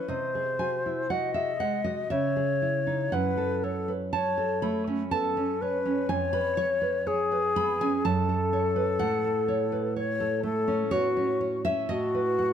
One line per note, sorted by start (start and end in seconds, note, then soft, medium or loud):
0.00 0.10 B4 medium
0.08 2.08 C3 medium
0.08 1.13 C5 medium
0.08 0.58 D#5 medium
0.35 0.76 G#4 soft
0.59 1.01 F#4 soft
0.59 1.08 G#5 medium
0.86 1.10 E4 soft
1.10 1.51 F#4 medium
1.10 2.13 D#5 medium
1.10 1.34 F#5 medium
1.34 1.76 G#4 medium
1.34 1.60 E5 medium
1.60 2.02 G#3 medium
1.60 1.84 F#5 medium
1.84 2.12 F#4 medium
1.84 2.10 D#5 medium
2.10 3.10 C#3 medium
2.10 3.16 C#5 medium
2.10 3.09 E5 medium
2.36 2.78 G#4 medium
2.62 3.03 E4 medium
2.87 3.13 D#4 medium
3.12 6.05 F#2 medium
3.12 3.65 B4 medium
3.12 4.09 F#5 loud
3.37 3.78 A4 medium
3.64 3.91 A4 medium
3.64 4.04 C#5 medium
3.88 4.13 B4 soft
4.13 4.53 C#5 medium
4.13 4.83 C#5 medium
4.13 4.60 A5 loud
4.38 4.77 A4 medium
4.62 5.02 A3 medium
4.62 5.10 B5 loud
4.87 5.27 C#4 medium
5.11 5.36 B3 medium
5.11 5.63 A4 medium
5.11 6.05 A5 loud
5.37 5.76 C#4 medium
5.61 6.11 B4 medium
5.61 6.00 C#5 medium
5.86 6.10 C#4 medium
6.09 8.01 F2 medium
6.09 7.09 C#5 loud
6.09 6.32 G#5 loud
6.33 6.72 B4 medium
6.33 6.57 B5 loud
6.57 6.97 C#5 loud
6.82 7.06 B4 medium
7.07 8.07 G#4 medium
7.07 7.46 C#5 medium
7.32 7.71 B4 medium
7.56 7.96 B3 medium
7.56 7.80 B5 loud
7.81 8.05 C#4 medium
7.81 8.04 G#5 loud
8.05 8.98 F#2 medium
8.05 9.97 A4 loud
8.05 8.97 A5 loud
8.29 8.67 A4 medium
8.53 8.91 C#5 medium
8.76 9.00 B4 medium
8.99 11.87 A2 medium
8.99 10.88 F#5 loud
9.24 9.63 A4 medium
9.48 9.87 C#5 medium
9.72 9.96 B4 medium
9.96 10.35 C#5 medium
9.96 10.44 C#5 loud
10.20 10.58 A4 medium
10.43 10.82 A3 medium
10.43 10.93 A4 medium
10.68 11.07 C#4 medium
10.91 11.17 B3 medium
10.91 11.63 F#4 medium
10.91 11.40 C#5 loud
11.17 11.56 C#4 medium
11.41 11.64 C#5 medium
11.65 11.90 C#4 medium
11.65 11.90 E5 loud
11.89 12.53 A2 medium
11.89 12.53 F#4 medium
11.89 12.53 D#5 loud
12.15 12.53 B4 medium
12.39 12.53 F#5 medium